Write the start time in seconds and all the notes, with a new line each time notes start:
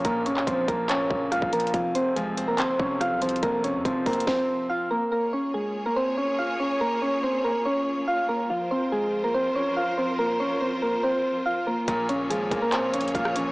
Already playing: A#2 C#3 F3 A#3
0.05 A#1 A#2 A#3 A#4, kick, closed hi-hat
0.26 C#3 C#4 C#5, closed hi-hat
0.37 clap
0.47 A#1 F3 C4 C5, kick, closed hi-hat
0.68 A#1 A#3 A#4, kick, closed hi-hat
0.89 A#2 C#4 C#5, clap, closed hi-hat
1.10 A#1 C#3, kick
1.32 C#2 A#2 F4 F5, cross-stick, closed hi-hat
1.42 A#1, kick
1.52 F3 A#3 A#4, closed hi-hat, open hi-hat
1.60 closed hi-hat
1.67 closed hi-hat
1.74 F1 F2 F3 F4, kick, closed hi-hat
1.95 C3 C4 C5, closed hi-hat
2.16 F3 G#3 G#4, closed hi-hat
2.37 C4, closed hi-hat
2.48 A#3 A#4
2.58 G#1 F2 C4 C5, clap, closed hi-hat
2.69 F1
2.79 F1 C3 C#4 C#5, kick
3.01 F2 F4 F5, cross-stick, closed hi-hat
3.11 C2
3.21 F3 C4 C5, closed hi-hat, open hi-hat
3.29 closed hi-hat
3.36 closed hi-hat
3.43 F1 F2 A#3 A#4, kick, closed hi-hat
3.64 C3 C#4 C#5, closed hi-hat
3.75 F2
3.85 F1 F3 C4 C5, kick, closed hi-hat
4.06 F1 A#3 C4 A#4, kick, closed hi-hat, open hi-hat
4.13 closed hi-hat
4.20 closed hi-hat
4.27 C4 C5, kick, snare
4.70 F4 F5
4.91 A#3 A#4
5.12 A#3 F4 G#4 A#4 C#5
5.33 C#4 C#5
5.54 G#3 G#4
5.86 A#3 A#4
5.96 C4 C5
6.17 C#4 C#5
6.39 F4 F5
6.60 C#4 C#5
6.81 A#3 A#4
7.02 C#4 C#5
7.23 C4 C5
7.44 A#3 A#4
7.65 C#4 C#5
8.08 F4 F5
8.29 A#3 A#4
8.50 F3 F4 A#4 C5
8.71 C4 C5
8.92 G#3 G#4
9.24 A#3 A#4
9.34 C4 C5
9.55 C#4 C#5
9.77 F4 F5
9.98 C4 C5
10.19 A#3 A#4
10.40 C#4 C#5
10.61 C4 C5
10.82 A#3 A#4
11.03 C4 C5
11.46 F4 F5
11.67 A#3 A#4
11.88 A#1 A#2 A#3 G#4 A#4 C#5, kick, closed hi-hat
12.09 C#3 C#4 C#5, closed hi-hat
12.30 G#1 F3 G#3 G#4, closed hi-hat
12.51 A#1 A#3, kick, closed hi-hat
12.62 A#3 A#4
12.72 A#2 C4 C5, clap, closed hi-hat
12.94 C#3 C#4 C#5, closed hi-hat
13.01 closed hi-hat
13.08 closed hi-hat
13.15 A#1 A#2 F4 F5, kick, closed hi-hat
13.25 cross-stick
13.35 F3 C#4 C#5, closed hi-hat